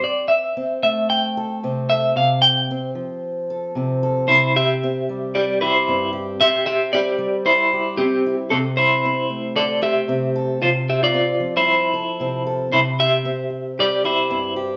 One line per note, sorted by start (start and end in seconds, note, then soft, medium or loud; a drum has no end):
0.00 0.56 C4 medium
0.00 0.28 D5 medium
0.04 muted steel-string acoustic guitar stroke medium
0.28 0.78 E5 medium
0.57 1.63 C4 medium
0.83 2.12 A3 medium
0.83 1.09 E5 medium
1.10 1.85 G5 loud
1.37 1.90 A4 medium
1.63 2.16 C3 medium
1.63 2.70 C4 medium
1.90 2.14 A4 medium
1.90 2.15 E5 loud
2.16 2.95 C3 medium
2.16 2.41 F5 medium
2.42 2.91 G5 loud
2.71 3.75 C4 medium
2.95 4.27 F3 medium
3.50 4.02 A4 medium
3.75 4.29 C3 medium
3.75 4.25 C4 medium
4.03 4.25 A4 medium
4.28 5.87 C3 medium
4.28 4.52 E4 medium
4.28 4.52 C5 loud
4.56 5.30 G4 medium
4.56 5.30 E5 medium
4.83 5.88 C4 medium
5.09 6.37 G3 medium
5.35 5.59 G4 medium
5.35 5.58 D5 loud
5.61 6.10 E4 medium
5.61 6.12 G4 medium
5.61 6.09 C5 medium
5.88 6.39 G2 medium
5.88 6.92 C4 medium
6.13 7.71 G4 medium
6.39 6.65 G4 medium
6.39 6.65 E5 loud
6.39 muted steel-string acoustic guitar stroke medium
6.66 6.91 G4 medium
6.66 6.90 E5 loud
6.93 8.00 C4 medium
6.93 7.42 G4 medium
6.93 7.45 D5 loud
7.19 8.47 G3 medium
7.46 7.94 E4 medium
7.46 7.94 C5 loud
7.73 8.51 G4 medium
7.97 8.35 C4 medium
7.97 9.05 C4 medium
7.97 8.35 G4 loud
7.97 muted steel-string acoustic guitar stroke medium
8.26 8.48 E4 medium
8.50 10.08 C3 medium
8.50 8.58 C4 medium
8.50 8.57 A4 loud
8.77 9.52 E4 medium
8.77 9.52 C5 loud
9.05 10.08 C4 medium
9.30 10.58 A3 medium
9.56 9.80 A4 medium
9.56 9.80 D5 medium
9.82 10.57 G4 medium
9.82 10.57 E5 medium
9.82 muted steel-string acoustic guitar stroke medium
10.08 10.61 C3 medium
10.08 11.14 C4 medium
10.36 10.58 A4 medium
10.62 11.40 C3 medium
10.62 10.69 F4 medium
10.62 10.69 C5 medium
10.89 11.01 G4 medium
10.89 11.01 E5 medium
11.03 11.51 F4 medium
11.03 11.56 D5 medium
11.14 12.20 C4 medium
11.40 12.71 F3 medium
11.57 12.42 E4 medium
11.57 12.43 C5 medium
11.94 12.45 A4 medium
12.20 12.72 C3 medium
12.20 13.25 C4 medium
12.46 12.69 A4 medium
12.72 14.30 C3 medium
12.72 12.80 E4 medium
12.72 12.79 C5 loud
13.00 13.74 G4 medium
13.00 13.80 E5 loud
13.25 14.30 C4 medium
13.50 muted steel-string acoustic guitar stroke medium
13.79 14.02 G4 medium
13.79 14.05 D5 loud
14.04 14.53 E4 medium
14.04 14.55 G4 medium
14.04 14.53 C5 medium
14.30 14.77 G2 medium
14.30 14.77 C4 medium
14.56 14.77 G4 medium